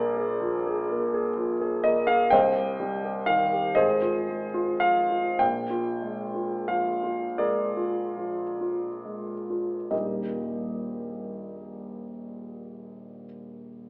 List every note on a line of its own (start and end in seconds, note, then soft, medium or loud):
0.00 2.27 A#1 medium
0.00 0.31 A#3 soft
0.00 0.17 G#4 medium
0.00 1.80 A#4 medium
0.00 1.84 D5 medium
0.17 0.56 G#4 soft
0.40 0.79 F3 soft
0.67 1.04 G#4 soft
0.89 1.28 A#3 soft
1.14 1.52 G#4 soft
1.36 1.75 F3 soft
1.61 1.99 G#4 soft
1.84 2.22 A#3 soft
1.84 2.08 D#5 medium
2.07 2.31 G#4 soft
2.07 2.31 F5 medium
2.30 3.73 C2 medium
2.30 3.23 C5 medium
2.30 3.23 D#5 medium
2.30 3.26 G5 medium
2.55 2.93 G4 soft
2.80 3.18 G3 soft
3.05 3.43 G4 soft
3.26 3.67 D#3 soft
3.26 3.76 F5 medium
3.53 3.77 G4 soft
3.75 5.36 G#1 medium
3.75 4.78 G#4 medium
3.75 4.78 C5 medium
3.75 4.81 D#5 medium
4.02 4.44 F4 soft
4.29 4.72 G#3 soft
4.54 4.99 F4 soft
4.80 5.28 F3 soft
4.80 5.39 F5 medium
5.10 5.40 F4 soft
5.39 9.87 A#1 soft
5.39 6.68 G5 medium
5.70 6.22 F4 soft
6.02 6.55 G#3 soft
6.34 6.88 F4 soft
6.68 7.24 F3 soft
6.68 7.38 F5 medium
7.04 7.62 F4 soft
7.38 8.01 G#3 soft
7.38 9.87 G#4 soft
7.38 9.87 A#4 soft
7.38 9.91 D5 medium
7.77 8.43 F4 soft
8.17 8.87 F3 soft
8.61 9.33 F4 soft
9.05 9.75 G#3 soft
9.50 9.91 F4 soft
9.90 13.25 D#1 soft
9.90 13.25 A#1 soft
9.90 13.25 G3 soft
9.90 13.25 A#3 soft
9.90 13.25 D#4 soft
9.90 13.25 G4 soft
9.90 13.25 D#5 soft